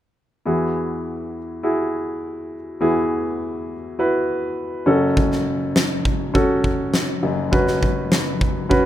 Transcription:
0, 0, Header, 1, 3, 480
1, 0, Start_track
1, 0, Key_signature, 4, "major"
1, 0, Tempo, 589391
1, 375, Time_signature, 4, 2, 24, 8
1, 7212, End_track
2, 0, Start_track
2, 0, Title_t, "Grand piano"
2, 0, Program_c, 0, 0
2, 370, Note_on_c, 0, 64, 56
2, 373, Note_on_c, 0, 40, 47
2, 374, Note_on_c, 0, 66, 47
2, 375, Note_on_c, 0, 52, 45
2, 378, Note_on_c, 0, 68, 62
2, 521, Control_c, 0, 64, 127
2, 1115, Note_off_c, 0, 64, 0
2, 1117, Note_off_c, 0, 66, 0
2, 1119, Note_off_c, 0, 68, 0
2, 1330, Note_on_c, 0, 64, 65
2, 1332, Note_on_c, 0, 66, 54
2, 1337, Note_on_c, 0, 68, 63
2, 2075, Note_off_c, 0, 64, 0
2, 2076, Note_off_c, 0, 66, 0
2, 2078, Note_off_c, 0, 68, 0
2, 2261, Note_off_c, 0, 40, 0
2, 2262, Note_off_c, 0, 52, 0
2, 2284, Note_on_c, 0, 52, 48
2, 2285, Note_on_c, 0, 40, 50
2, 2286, Note_on_c, 0, 64, 61
2, 2287, Note_on_c, 0, 66, 50
2, 2292, Note_on_c, 0, 68, 71
2, 3033, Note_off_c, 0, 64, 0
2, 3034, Note_off_c, 0, 66, 0
2, 3036, Note_off_c, 0, 68, 0
2, 3248, Note_on_c, 0, 64, 58
2, 3248, Note_on_c, 0, 66, 53
2, 3253, Note_on_c, 0, 71, 75
2, 3937, Note_off_c, 0, 40, 0
2, 3937, Note_off_c, 0, 52, 0
2, 3951, Note_off_c, 0, 66, 0
2, 3958, Note_on_c, 0, 61, 68
2, 3963, Note_on_c, 0, 66, 55
2, 3965, Note_on_c, 0, 30, 53
2, 3965, Note_on_c, 0, 42, 56
2, 3968, Note_on_c, 0, 69, 69
2, 3971, Note_off_c, 0, 64, 0
2, 3974, Note_off_c, 0, 71, 0
2, 3983, Control_c, 0, 64, 0
2, 4115, Control_c, 0, 64, 127
2, 4734, Note_off_c, 0, 61, 0
2, 4737, Note_off_c, 0, 66, 0
2, 4739, Note_off_c, 0, 69, 0
2, 5161, Note_on_c, 0, 61, 66
2, 5165, Note_on_c, 0, 66, 60
2, 5167, Note_on_c, 0, 69, 68
2, 5857, Note_off_c, 0, 30, 0
2, 5857, Note_off_c, 0, 42, 0
2, 5887, Note_on_c, 0, 30, 53
2, 5887, Note_on_c, 0, 42, 58
2, 5910, Note_off_c, 0, 61, 0
2, 5913, Note_off_c, 0, 66, 0
2, 5913, Note_off_c, 0, 69, 0
2, 6120, Note_on_c, 0, 61, 57
2, 6124, Note_on_c, 0, 66, 58
2, 6126, Note_on_c, 0, 71, 69
2, 6870, Note_off_c, 0, 61, 0
2, 6872, Note_off_c, 0, 66, 0
2, 6873, Note_off_c, 0, 71, 0
2, 7080, Note_on_c, 0, 61, 66
2, 7083, Note_on_c, 0, 66, 64
2, 7086, Note_on_c, 0, 71, 73
2, 7212, Note_off_c, 0, 30, 0
2, 7212, Note_off_c, 0, 42, 0
2, 7212, Note_off_c, 0, 61, 0
2, 7212, Note_off_c, 0, 66, 0
2, 7212, Note_off_c, 0, 71, 0
2, 7212, End_track
3, 0, Start_track
3, 0, Title_t, "Drums"
3, 4210, Note_on_c, 9, 36, 82
3, 4292, Note_off_c, 9, 36, 0
3, 4331, Note_on_c, 9, 38, 26
3, 4413, Note_off_c, 9, 38, 0
3, 4690, Note_on_c, 9, 38, 94
3, 4771, Note_off_c, 9, 38, 0
3, 4929, Note_on_c, 9, 36, 74
3, 5011, Note_off_c, 9, 36, 0
3, 5172, Note_on_c, 9, 36, 74
3, 5253, Note_off_c, 9, 36, 0
3, 5410, Note_on_c, 9, 36, 64
3, 5491, Note_off_c, 9, 36, 0
3, 5649, Note_on_c, 9, 38, 73
3, 5730, Note_off_c, 9, 38, 0
3, 6131, Note_on_c, 9, 36, 77
3, 6212, Note_off_c, 9, 36, 0
3, 6250, Note_on_c, 9, 38, 28
3, 6332, Note_off_c, 9, 38, 0
3, 6373, Note_on_c, 9, 36, 67
3, 6455, Note_off_c, 9, 36, 0
3, 6610, Note_on_c, 9, 38, 91
3, 6692, Note_off_c, 9, 38, 0
3, 6851, Note_on_c, 9, 36, 79
3, 6932, Note_off_c, 9, 36, 0
3, 7094, Note_on_c, 9, 36, 69
3, 7175, Note_off_c, 9, 36, 0
3, 7212, End_track
0, 0, End_of_file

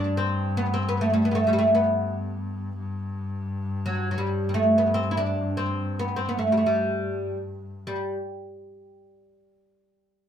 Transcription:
0, 0, Header, 1, 3, 480
1, 0, Start_track
1, 0, Tempo, 500000
1, 9877, End_track
2, 0, Start_track
2, 0, Title_t, "Oud"
2, 0, Program_c, 0, 24
2, 0, Note_on_c, 0, 62, 83
2, 163, Note_off_c, 0, 62, 0
2, 166, Note_on_c, 0, 60, 70
2, 549, Note_on_c, 0, 59, 72
2, 558, Note_off_c, 0, 60, 0
2, 705, Note_off_c, 0, 59, 0
2, 708, Note_on_c, 0, 60, 78
2, 844, Note_off_c, 0, 60, 0
2, 851, Note_on_c, 0, 59, 74
2, 967, Note_off_c, 0, 59, 0
2, 971, Note_on_c, 0, 57, 69
2, 1080, Note_off_c, 0, 57, 0
2, 1090, Note_on_c, 0, 55, 66
2, 1190, Note_off_c, 0, 55, 0
2, 1201, Note_on_c, 0, 59, 67
2, 1249, Note_off_c, 0, 59, 0
2, 1261, Note_on_c, 0, 59, 52
2, 1286, Note_off_c, 0, 59, 0
2, 1296, Note_on_c, 0, 57, 71
2, 1405, Note_off_c, 0, 57, 0
2, 1410, Note_on_c, 0, 55, 60
2, 1424, Note_on_c, 0, 57, 48
2, 1434, Note_off_c, 0, 55, 0
2, 1456, Note_off_c, 0, 57, 0
2, 1468, Note_on_c, 0, 55, 69
2, 1518, Note_off_c, 0, 55, 0
2, 1522, Note_on_c, 0, 57, 71
2, 1663, Note_off_c, 0, 57, 0
2, 1677, Note_on_c, 0, 59, 67
2, 3161, Note_off_c, 0, 59, 0
2, 3702, Note_on_c, 0, 54, 70
2, 3935, Note_off_c, 0, 54, 0
2, 3946, Note_on_c, 0, 54, 52
2, 4009, Note_off_c, 0, 54, 0
2, 4011, Note_on_c, 0, 55, 66
2, 4299, Note_off_c, 0, 55, 0
2, 4311, Note_on_c, 0, 55, 54
2, 4356, Note_off_c, 0, 55, 0
2, 4360, Note_on_c, 0, 57, 75
2, 4584, Note_off_c, 0, 57, 0
2, 4588, Note_on_c, 0, 59, 68
2, 4744, Note_on_c, 0, 60, 72
2, 4752, Note_off_c, 0, 59, 0
2, 4895, Note_off_c, 0, 60, 0
2, 4907, Note_on_c, 0, 64, 57
2, 4963, Note_off_c, 0, 64, 0
2, 4967, Note_on_c, 0, 62, 72
2, 5345, Note_off_c, 0, 62, 0
2, 5349, Note_on_c, 0, 60, 73
2, 5754, Note_on_c, 0, 59, 69
2, 5761, Note_off_c, 0, 60, 0
2, 5914, Note_off_c, 0, 59, 0
2, 5917, Note_on_c, 0, 60, 61
2, 6025, Note_off_c, 0, 60, 0
2, 6035, Note_on_c, 0, 59, 67
2, 6127, Note_off_c, 0, 59, 0
2, 6130, Note_on_c, 0, 57, 63
2, 6244, Note_off_c, 0, 57, 0
2, 6261, Note_on_c, 0, 55, 57
2, 6307, Note_off_c, 0, 55, 0
2, 6311, Note_on_c, 0, 57, 46
2, 6384, Note_off_c, 0, 57, 0
2, 6397, Note_on_c, 0, 55, 64
2, 7073, Note_off_c, 0, 55, 0
2, 7555, Note_on_c, 0, 55, 64
2, 7840, Note_off_c, 0, 55, 0
2, 9877, End_track
3, 0, Start_track
3, 0, Title_t, "Double bass"
3, 0, Program_c, 1, 43
3, 0, Note_on_c, 1, 43, 65
3, 2674, Note_off_c, 1, 43, 0
3, 2680, Note_on_c, 1, 43, 64
3, 7625, Note_off_c, 1, 43, 0
3, 9877, End_track
0, 0, End_of_file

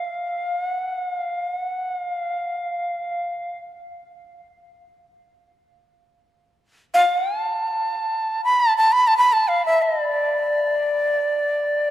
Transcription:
0, 0, Header, 1, 2, 480
1, 0, Start_track
1, 0, Tempo, 500000
1, 11430, End_track
2, 0, Start_track
2, 0, Title_t, "Shakuhachi"
2, 0, Program_c, 0, 77
2, 0, Note_on_c, 0, 77, 50
2, 637, Note_off_c, 0, 77, 0
2, 637, Note_on_c, 0, 78, 50
2, 1049, Note_off_c, 0, 78, 0
2, 1049, Note_on_c, 0, 77, 50
2, 1501, Note_off_c, 0, 77, 0
2, 1501, Note_on_c, 0, 78, 50
2, 1923, Note_off_c, 0, 78, 0
2, 1923, Note_on_c, 0, 77, 50
2, 3442, Note_off_c, 0, 77, 0
2, 6664, Note_on_c, 0, 77, 74
2, 7124, Note_off_c, 0, 77, 0
2, 7124, Note_on_c, 0, 81, 74
2, 8078, Note_off_c, 0, 81, 0
2, 8105, Note_on_c, 0, 83, 83
2, 8259, Note_on_c, 0, 81, 82
2, 8273, Note_off_c, 0, 83, 0
2, 8414, Note_off_c, 0, 81, 0
2, 8420, Note_on_c, 0, 81, 73
2, 8566, Note_on_c, 0, 83, 82
2, 8580, Note_off_c, 0, 81, 0
2, 8710, Note_on_c, 0, 81, 73
2, 8724, Note_off_c, 0, 83, 0
2, 8804, Note_off_c, 0, 81, 0
2, 8810, Note_on_c, 0, 83, 72
2, 8954, Note_on_c, 0, 81, 70
2, 8969, Note_off_c, 0, 83, 0
2, 9101, Note_on_c, 0, 77, 67
2, 9115, Note_off_c, 0, 81, 0
2, 9265, Note_off_c, 0, 77, 0
2, 9271, Note_on_c, 0, 76, 75
2, 9428, Note_on_c, 0, 75, 70
2, 9442, Note_off_c, 0, 76, 0
2, 9610, Note_off_c, 0, 75, 0
2, 9610, Note_on_c, 0, 74, 70
2, 11430, Note_off_c, 0, 74, 0
2, 11430, End_track
0, 0, End_of_file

